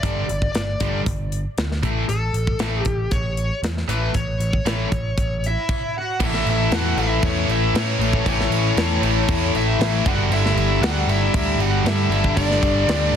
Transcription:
0.00 picked electric bass G1, distorted electric guitar G2 D3, lead electric guitar D5, kick, closed hi-hat
0.04 distorted electric guitar G3
0.29 picked electric bass G1, closed hi-hat
0.42 kick
0.52 picked electric bass G1, lead electric guitar D5, snare, closed hi-hat
0.80 picked electric bass G1, distorted electric guitar G2 D3 G3, kick, closed hi-hat
1.06 picked electric bass G1, kick, closed hi-hat
1.32 closed hi-hat
1.58 picked electric bass D2, snare, closed hi-hat
1.72 snare
1.83 picked electric bass A1, distorted electric guitar A2 E3 A3, kick, closed hi-hat
2.09 picked electric bass A1, lead electric guitar A4, closed hi-hat
2.33 picked electric bass A1, closed hi-hat
2.47 kick
2.59 picked electric bass A1, distorted electric guitar A2 E3 A3, snare, closed hi-hat
2.83 picked electric bass A1, lead electric guitar G4, kick, closed hi-hat
3.11 picked electric bass A1, lead electric guitar C#5, kick, closed hi-hat
3.37 closed hi-hat
3.63 picked electric bass E2, snare, closed hi-hat
3.77 snare
3.88 picked electric bass A1, distorted electric guitar A2 E3 A3, lead electric guitar B4, closed hi-hat
4.14 picked electric bass A1, lead electric guitar C#5, kick, closed hi-hat
4.38 picked electric bass A1, closed hi-hat
4.53 kick
4.65 picked electric bass A1, distorted electric guitar A2 E3 A3, snare, closed hi-hat
4.92 picked electric bass A1, kick, closed hi-hat
5.17 picked electric bass A1, kick, closed hi-hat
5.44 lead electric guitar E4 E5, closed hi-hat
5.69 kick, crash
5.98 lead electric guitar F#4 F#5
6.20 picked electric bass A1, distorted electric guitar A2 E3, kick, crash
6.24 distorted electric guitar A3, lead electric guitar E4 E5
6.34 snare
6.46 picked electric bass A1, lead electric guitar E5, crash
6.51 lead electric guitar E4
6.71 picked electric bass E2, lead electric guitar F#5, snare, crash
6.76 lead electric guitar F#4
6.97 picked electric bass A1, distorted electric guitar A2 E3 A3, lead electric guitar E4 E5, crash
7.23 picked electric bass E2, lead electric guitar C#5, kick, crash
7.28 lead electric guitar C#4
7.48 picked electric bass A1, lead electric guitar E4 E5, crash
7.73 distorted electric guitar A2 E3 A3, picked electric bass A2, lead electric guitar C#4, snare, crash
7.78 lead electric guitar C#5
7.99 picked electric bass A1, distorted electric guitar A2 E3 A3, crash
8.13 kick
8.24 picked electric bass A1, distorted electric guitar A2 E3 A3, kick, crash
8.28 lead electric guitar C#4 C#5
8.40 snare
8.50 picked electric bass A1, crash
8.77 picked electric bass E2, snare, crash
9.01 picked electric bass A1, distorted electric guitar A2 E3 A3, crash
9.28 picked electric bass E2, kick, crash
9.55 picked electric bass A1, lead electric guitar E4 E5, crash
9.79 picked electric bass A1, distorted electric guitar A2 E3 A3, snare, crash
10.04 picked electric bass G1, distorted electric guitar G2 D3 G3, lead electric guitar F#5, kick, crash
10.09 lead electric guitar F#4
10.30 picked electric bass G1, lead electric guitar E4 E5, crash
10.46 snare
10.56 picked electric bass G1, lead electric guitar E4 E5, crash
10.81 picked electric bass D2, distorted electric guitar G2 D3, lead electric guitar F#5, snare, crash
10.86 distorted electric guitar G3, lead electric guitar F#4
11.07 picked electric bass G1, lead electric guitar E5, crash
11.12 lead electric guitar E4
11.34 picked electric bass D2, lead electric guitar E4 E5, kick, crash
11.58 picked electric bass G1, distorted electric guitar D3 G3, lead electric guitar F#4, crash
11.62 distorted electric guitar G2, lead electric guitar F#5
11.84 picked electric bass G2, distorted electric guitar G2 D3 G3, lead electric guitar E4 E5, snare, crash
12.10 picked electric bass G1, distorted electric guitar G2 D3, crash
12.14 distorted electric guitar G3
12.24 kick
12.36 picked electric bass G1, lead electric guitar D4 D5, kick, crash
12.51 snare
12.63 picked electric bass G1, kick, crash
12.86 picked electric bass D2, distorted electric guitar G2 D3, snare, crash
12.90 distorted electric guitar G3
13.13 picked electric bass G1

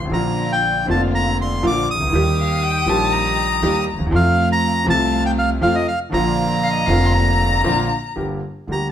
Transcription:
0.04 upright bass A1, grand piano A1
0.09 upright bass A#1, grand piano A#1 A#2 D3 F3 A#3, string section A#3 D4 F4, bandoneon A#5
0.14 grand piano F4
0.52 bandoneon G5
0.85 grand piano F1 F2 D3 F3 A#3 F4, upright bass F1, string section A#3 D4 F4
0.91 bandoneon A5
1.15 bandoneon A#5
1.41 bandoneon C6
1.62 upright bass A#1, grand piano A#1 A#2 D3 F3 A#3 F4, string section A#3 D4 F4
1.67 bandoneon D6
1.91 upright bass C2, bandoneon D#6
1.95 grand piano C2
2.00 upright bass C#2, grand piano C#2
2.06 upright bass D2, grand piano D2
2.11 upright bass D#2, grand piano D#2 D#3 G3 A#3, string section A#3 D#4 G4
2.15 grand piano G4
2.40 violin F5
2.63 violin G5
2.86 upright bass A#1, grand piano A#1 A#2 D#3 G3 A#3 G4, string section A#3 D#4 G4, violin A5
3.12 violin A#5
3.62 upright bass D#2, grand piano D#2 D#3 G3 A#3 G4, string section A#3 D#4 G4
3.92 upright bass D2, grand piano D2
3.98 grand piano D#2, upright bass D#2
4.05 upright bass E2, grand piano E2
4.10 grand piano F2 C3 F3 A3, upright bass F2, string section A3 C4 F4
4.15 grand piano F4, bandoneon F5
4.52 bandoneon A#5
4.86 grand piano C2 C3 F3 A3 F4, upright bass C2, string section A3 C4 F4, bandoneon A5
5.26 bandoneon G5
5.39 bandoneon F5
5.61 grand piano F2 C3 F3 A3 F4, upright bass F2, string section A3 C4 F4, bandoneon F5
5.75 bandoneon D#5
5.88 bandoneon F5
6.10 grand piano A#1 A#2 D3 F3 A#3, upright bass A#1, string section A#3 D4 F4, bandoneon A#5
6.14 grand piano F4
6.63 violin F5
6.73 violin D#5
6.86 upright bass F1, grand piano F1 F2 D3 F3 A#3, string section A#3 D4 F4, violin F5
6.90 grand piano F4
7.06 violin C6
7.13 violin A#5
7.64 grand piano A#1 A#2 D3 F3 A#3 F4, upright bass A#1, string section A#3 D4 F4
8.16 grand piano G1 G2 D3 G3 A#3 G4, upright bass G1
8.67 upright bass D2, grand piano D2 D3 G3 A#3
8.72 grand piano G4, bandoneon A#5

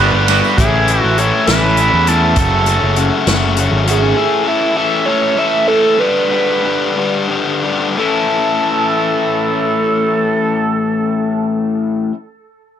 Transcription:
Already playing: analog synth lead B4
0.00 picked electric bass G1, overdriven electric guitar G2 D3 G3 B3 D4 G4, clean electric guitar F#4
0.13 picked electric bass G1
0.28 overdriven electric guitar G2 D3 G3 B3 D4 G4, clean electric guitar F#4, analog synth lead B4, ride, tambourine
0.45 tambourine
0.57 picked electric bass A1, overdriven electric guitar A2 E3 A3 C#4 E4, analog synth lead G#4, kick, closed hi-hat
0.88 overdriven electric guitar A2 E3 A3 C#4 E4, closed hi-hat
1.01 picked electric bass A1, analog synth lead F#4
1.18 overdriven electric guitar A2 E3 A3 C#4 E4, analog synth lead C#5, closed hi-hat
1.47 picked electric bass A1, overdriven electric guitar A2 E3 A3 C#4, analog synth lead B4, snare, closed hi-hat
1.51 overdriven electric guitar E4
1.77 overdriven electric guitar A2 E3 A3 C#4 E4, closed hi-hat
1.93 picked electric bass E2
2.07 overdriven electric guitar A2 E3 A3 C#4 E4, analog synth lead A4, closed hi-hat
2.36 picked electric bass F#1, overdriven electric guitar F#2 C#3 F#3 A3 C#4 F#4, analog synth lead A4, kick, closed hi-hat
2.66 overdriven electric guitar F#2 C#3 F#3 A3 C#4 F#4, closed hi-hat
2.82 picked electric bass F#1
2.96 overdriven electric guitar F#2 C#3 F#3 A3 C#4 F#4, closed hi-hat
3.26 picked electric bass F#1, overdriven electric guitar F#2 C#3 F#3 A3 C#4 F#4, snare, closed hi-hat
3.56 overdriven electric guitar F#2 C#3 F#3 A3 C#4 F#4, closed hi-hat
3.71 picked electric bass G#1
3.86 overdriven electric guitar F#2 C#3 F#3 A3 C#4 F#4, closed hi-hat
3.91 analog synth lead G#4
4.15 overdriven electric guitar A2 E3 A3 C#4 A4
4.45 overdriven electric guitar A2 E3 A3 C#4 A4, analog synth lead E4
4.76 overdriven electric guitar A2 E3 A3 C#4 A4, analog synth lead E5
5.06 overdriven electric guitar A2 E3 A3 C#4 A4, analog synth lead C#5
5.37 overdriven electric guitar A2 E3 A3 C#4 A4, analog synth lead E5
5.67 overdriven electric guitar A2 E3 A3 C#4 A4, analog synth lead A4
5.98 overdriven electric guitar G2 D3 G3 B3 D4 G4, analog synth lead B4
6.30 overdriven electric guitar G2 D3 G3 B3 D4 G4
6.62 overdriven electric guitar G2 D3 G3 B3 D4 G4
6.97 overdriven electric guitar G2 D3 G3 B3 D4 G4
7.28 overdriven electric guitar G2 D3 G3 B3 D4 G4
7.62 overdriven electric guitar G2 D3 G3 B3 D4 G4
7.96 overdriven electric guitar A2 E3 A3 C#4, analog synth lead A4
8.00 overdriven electric guitar E4

